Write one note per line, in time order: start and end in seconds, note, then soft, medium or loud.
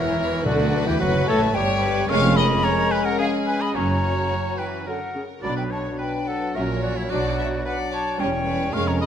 0.00 0.46 E1 medium
0.00 0.46 E2 medium
0.00 0.44 E3 medium
0.00 0.45 E3 medium
0.00 0.45 E4 medium
0.00 0.45 A#4 medium
0.00 0.17 C#5 medium
0.00 0.44 E5 medium
0.18 0.45 C#5 medium
0.45 0.86 D2 medium
0.45 1.24 B2 loud
0.45 0.87 D3 medium
0.45 0.86 D3 medium
0.45 0.89 D3 medium
0.45 0.86 D4 medium
0.45 0.86 F#4 medium
0.45 1.55 B4 medium
0.45 0.89 D5 medium
0.86 1.01 E2 medium
0.86 0.92 E3 medium
0.86 1.00 E3 medium
0.86 1.02 E3 medium
0.86 1.00 E4 medium
0.86 1.00 G4 medium
0.86 1.01 G4 medium
0.86 1.01 E5 medium
1.00 1.28 F#1 medium
1.00 1.28 F#2 medium
1.00 1.28 F#3 medium
1.00 1.27 F#3 medium
1.00 1.29 F#3 medium
1.00 1.28 F#4 medium
1.00 1.28 B4 medium
1.00 1.27 B4 medium
1.00 1.29 F#5 medium
1.27 1.55 A1 medium
1.27 1.55 A2 medium
1.27 1.54 A3 medium
1.27 1.55 A3 medium
1.27 1.57 A3 loud
1.27 1.41 A4 loud
1.27 1.40 C#5 medium
1.27 1.54 C#5 medium
1.27 1.56 A5 loud
1.55 2.08 G1 medium
1.55 2.08 G2 medium
1.55 2.09 G3 medium
1.55 2.10 G3 medium
1.55 2.09 G4 medium
1.55 1.82 C#5 medium
1.55 2.11 C#5 medium
1.55 2.09 C#5 medium
1.55 2.08 G5 loud
1.82 2.09 B4 medium
2.08 2.55 F1 loud
2.08 2.55 F2 loud
2.08 2.34 G#3 medium
2.08 3.15 G#3 medium
2.08 3.71 G#3 medium
2.08 2.34 C#4 medium
2.08 5.12 C#4 medium
2.08 3.16 C#4 medium
2.08 3.17 A#4 medium
2.08 2.36 F5 loud
2.08 2.39 F5 loud
2.08 2.37 C#6 loud
2.36 2.45 D#5 loud
2.36 2.66 D#5 loud
2.36 2.65 B5 loud
2.63 2.72 C#5 medium
2.63 2.93 C#5 loud
2.63 2.93 A#5 loud
2.91 3.06 B4 loud
2.91 3.05 B4 medium
2.91 3.07 G#5 loud
3.05 3.18 A#4 loud
3.05 3.19 A#4 medium
3.05 3.19 F#5 loud
3.19 3.74 G#3 medium
3.19 3.74 C#4 medium
3.19 3.31 G#4 medium
3.19 3.47 G#4 medium
3.19 3.74 G#4 medium
3.19 3.26 F5 loud
3.47 3.62 B4 medium
3.47 3.61 B4 medium
3.47 3.63 G#5 loud
3.61 3.77 D#5 medium
3.61 3.75 D#5 medium
3.61 3.74 B5 loud
3.74 4.21 F#1 medium
3.74 4.21 F#2 medium
3.74 4.01 F#3 medium
3.74 4.85 F#3 medium
3.74 5.13 F#3 medium
3.74 4.00 C#4 medium
3.74 4.85 C#4 medium
3.74 5.15 F#4 medium
3.74 4.57 C#5 medium
3.74 4.60 C#5 medium
3.74 4.57 A#5 medium
4.31 4.39 F#3 medium
4.58 4.86 E3 medium
4.58 4.89 B4 medium
4.58 4.86 B4 medium
4.58 4.65 G5 medium
4.87 4.95 D3 medium
4.87 5.00 F#3 soft
4.87 5.00 C#4 soft
4.87 5.43 A#4 medium
4.87 5.24 A#4 medium
4.87 5.23 F#5 medium
5.15 5.23 C#3 medium
5.42 5.90 B1 medium
5.42 5.90 B2 medium
5.42 5.69 F#3 medium
5.42 8.16 F#3 medium
5.42 8.22 F#3 medium
5.42 5.69 D4 medium
5.42 6.57 D4 medium
5.42 6.52 D4 medium
5.42 5.56 D5 medium
5.42 5.57 D5 medium
5.42 5.57 B5 medium
5.57 5.62 B4 medium
5.57 5.72 B4 medium
5.57 5.64 G5 medium
5.71 5.98 C#5 medium
5.71 5.99 C#5 medium
5.71 5.78 A5 medium
5.99 6.26 B4 medium
5.99 6.11 B4 medium
5.99 6.52 B4 medium
5.99 6.29 G5 medium
6.27 6.55 A4 medium
6.27 6.57 A4 medium
6.27 6.55 F#5 medium
6.55 7.02 A#1 medium
6.55 7.02 A#2 medium
6.55 6.81 F#3 medium
6.55 7.07 C#4 medium
6.55 6.81 C#4 soft
6.55 7.11 C#4 medium
6.55 6.82 A#4 medium
6.55 6.83 A#4 medium
6.55 7.10 C#5 medium
6.55 6.61 E5 medium
6.82 6.97 F#4 medium
6.82 6.98 F#4 medium
6.82 6.96 D5 medium
6.96 7.11 E4 medium
6.96 7.02 E4 medium
6.96 7.03 C#5 medium
7.10 7.57 B1 medium
7.10 7.57 B2 medium
7.10 7.37 F#3 medium
7.10 8.16 D4 medium
7.10 7.37 D4 medium
7.10 8.22 D4 medium
7.10 7.65 F#4 medium
7.10 7.65 D5 medium
7.10 7.39 D5 medium
7.39 7.47 E5 medium
7.65 7.73 B4 medium
7.65 7.78 B4 medium
7.65 8.19 D5 medium
7.65 7.92 F#5 medium
7.92 8.00 C#5 medium
7.92 8.19 C#5 medium
7.92 8.22 A5 medium
8.20 8.65 E1 medium
8.20 8.65 E2 medium
8.20 8.45 G3 medium
8.20 8.74 G3 medium
8.20 8.71 G3 medium
8.20 8.45 C#4 medium
8.20 8.70 C#4 medium
8.20 8.74 C#4 medium
8.20 8.75 C#5 medium
8.20 8.73 C#5 medium
8.20 8.29 C#5 medium
8.20 8.75 G5 medium
8.49 8.74 B4 medium
8.73 9.06 F1 medium
8.73 9.06 F2 medium
8.73 8.99 G#3 medium
8.73 9.06 G#3 medium
8.73 8.99 C#4 medium
8.73 9.06 C#4 medium
8.73 9.06 A#4 medium
8.73 8.89 F5 medium
8.73 8.87 F5 medium
8.73 8.89 C#6 loud
8.87 8.93 C#5 medium
8.87 9.00 C#5 medium
8.87 9.00 A#5 medium
9.00 9.06 D#5 medium
9.00 9.06 B5 medium